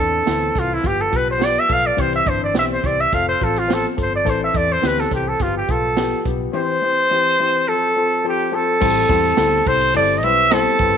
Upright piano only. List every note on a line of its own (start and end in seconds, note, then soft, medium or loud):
0.00 0.20 E3 medium
0.00 0.20 C4 medium
0.00 0.20 D4 medium
0.26 0.49 E3 medium
0.26 0.49 C4 medium
0.26 0.49 E4 medium
0.55 0.77 E3 medium
0.55 0.78 C4 medium
0.55 0.78 A4 medium
0.82 1.05 F3 medium
0.82 1.05 B3 medium
0.82 1.06 G4 medium
1.10 1.34 F3 medium
1.10 1.34 B3 medium
1.10 1.34 G4 medium
1.38 1.62 F3 medium
1.38 1.62 B3 medium
1.38 1.62 G4 medium
1.68 1.91 F3 medium
1.68 1.91 B3 medium
1.68 1.92 A4 medium
1.97 2.19 E3 medium
1.97 2.20 C4 medium
1.97 2.20 G4 medium
2.25 2.48 E3 medium
2.25 2.48 C4 medium
2.25 2.49 D4 medium
2.54 2.77 E3 medium
2.54 2.77 C4 medium
2.54 2.77 G4 medium
2.83 3.06 E3 medium
2.83 3.06 C4 medium
2.83 3.06 G4 medium
3.12 3.34 F3 medium
3.12 3.35 C4 medium
3.12 3.35 A4 medium
3.40 3.63 F3 medium
3.40 3.63 C4 medium
3.40 3.63 F4 medium
3.68 3.91 F3 medium
3.68 3.91 C4 medium
3.68 3.91 C5 medium
3.96 4.19 F3 medium
3.96 4.20 C4 medium
3.96 4.20 A4 medium
4.24 4.47 E3 medium
4.24 4.48 C4 medium
4.24 4.48 A4 loud
4.53 4.76 E3 medium
4.53 4.76 C4 medium
4.53 4.77 A4 medium
4.82 5.05 E3 medium
4.82 5.05 C4 medium
4.82 5.05 G4 medium
5.11 5.33 E3 medium
5.11 5.34 C4 medium
5.11 5.34 A4 medium
5.39 5.62 F3 medium
5.39 5.62 B3 medium
5.39 5.63 G4 medium
5.68 5.91 F3 medium
5.68 5.91 B3 medium
5.68 5.91 F4 medium
5.96 6.19 F3 medium
5.96 6.19 B3 medium
5.96 6.20 G4 medium
6.26 6.48 F3 medium
6.26 6.48 B3 medium
6.26 6.48 G4 medium
6.53 6.76 E3 medium
6.53 6.76 C4 medium
6.53 6.76 G4 loud
6.82 7.04 E3 medium
6.82 7.05 C4 medium
6.82 7.05 G4 medium
7.11 7.33 E3 medium
7.11 7.33 C4 medium
7.11 7.33 G4 medium
7.40 7.62 E3 medium
7.40 7.62 C4 medium
7.40 7.62 G4 medium
7.67 7.90 F3 medium
7.67 7.90 C4 medium
7.67 7.90 A4 medium
7.96 8.18 F3 medium
7.96 8.18 C4 medium
7.96 8.19 A4 medium
8.24 8.46 F3 medium
8.24 8.47 C4 medium
8.24 8.47 A4 medium
8.52 8.74 F3 medium
8.52 8.75 C4 medium
8.52 8.75 A4 medium
8.80 9.03 G3 loud
8.80 9.03 C4 medium
8.80 9.03 E4 medium
8.80 9.03 A4 loud
9.09 9.32 G3 medium
9.09 9.31 C4 medium
9.09 9.32 E4 medium
9.09 9.32 A4 loud
9.37 9.60 G3 medium
9.37 9.60 C4 medium
9.37 9.60 E4 medium
9.37 9.60 A4 medium
9.66 9.88 G3 medium
9.66 9.89 C4 medium
9.66 9.89 E4 medium
9.66 9.89 A4 medium
9.94 10.16 G3 medium
9.94 10.17 C4 medium
9.94 10.17 E4 medium
9.94 10.17 A4 medium
10.24 10.45 G3 medium
10.24 10.45 C4 medium
10.24 10.46 E4 medium
10.24 10.46 B4 medium
10.52 10.74 G3 loud
10.52 10.74 C4 medium
10.52 10.74 E4 medium
10.52 10.74 C5 loud
10.79 10.97 G3 medium
10.79 10.97 C4 medium
10.79 10.97 E4 medium
10.79 10.97 B4 medium